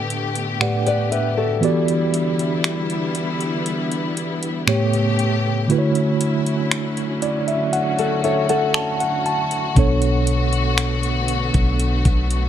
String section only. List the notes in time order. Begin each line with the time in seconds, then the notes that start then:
Already playing: D3 A3 B3 G4
1.62 D3 G3 B3 E4
4.68 C#3 A3 G4
5.70 D3 F#3 C#4 E4
7.73 F#4
9.77 D3 A3 B3